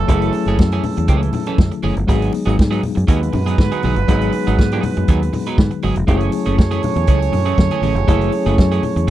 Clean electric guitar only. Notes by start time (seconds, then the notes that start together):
0.08 E3 A3 C#4 A4
0.34 muted clean electric guitar stroke
0.48 E3 A3 C#4 G#4
0.59 muted clean electric guitar stroke
0.73 E3 A3 C#4 G#4
0.84 muted clean electric guitar stroke
0.97 muted clean electric guitar stroke
1.08 E3 A3 C#4 G#4
1.22 muted clean electric guitar stroke
1.34 muted clean electric guitar stroke
1.47 E3 A3 C#4 A4
1.72 muted clean electric guitar stroke
1.83 E3 A3 C#4 G#4
1.96 muted clean electric guitar stroke
2.08 F#3 B3 D#4 G#4
2.33 muted clean electric guitar stroke
2.46 F#3 B3 D#4 G#4
2.57 muted clean electric guitar stroke
2.71 F#3 B3 D#4 G#4
2.83 muted clean electric guitar stroke
2.95 muted clean electric guitar stroke
3.07 F#3 B3 D#4 G#4
3.21 muted clean electric guitar stroke
3.33 muted clean electric guitar stroke
3.46 F#3 B3 D#4 G#4
3.58 muted clean electric guitar stroke
3.72 F#3 B3 D#4 G#4
3.84 F#3 B3 D#4 G#4
3.96 muted clean electric guitar stroke
4.08 F#3 B3 D#4 B4
4.33 muted clean electric guitar stroke
4.47 F#3 B3 D#4 G#4
4.58 muted clean electric guitar stroke
4.73 F#3 B3 D#4 G#4
4.84 muted clean electric guitar stroke
4.97 muted clean electric guitar stroke
5.09 F#3 B3 D#4 G#4
5.21 muted clean electric guitar stroke
5.33 muted clean electric guitar stroke
5.47 F#3 B3 D#4 B4
5.71 muted clean electric guitar stroke
5.83 F#3 B3 D#4 G#4
5.97 muted clean electric guitar stroke
6.07 E3 A3 C#4 G#4
6.32 muted clean electric guitar stroke
6.46 E3 A3 C#4 G#4
6.57 muted clean electric guitar stroke
6.71 E3 A3 C#4 G#4
6.83 muted clean electric guitar stroke
6.96 muted clean electric guitar stroke
7.08 E3 A3 C#4 G#4
7.21 muted clean electric guitar stroke
7.33 muted clean electric guitar stroke
7.46 E3 A3 C#4 G#4
7.58 muted clean electric guitar stroke
7.71 E3 A3 C#4 G#4
7.82 E3 A3 C#4 G#4
7.96 muted clean electric guitar stroke
8.08 E3 A3 C#4 A4
8.32 muted clean electric guitar stroke
8.46 E3 A3 C#4 G#4
8.59 muted clean electric guitar stroke
8.72 E3 A3 C#4 G#4
8.84 muted clean electric guitar stroke
8.96 muted clean electric guitar stroke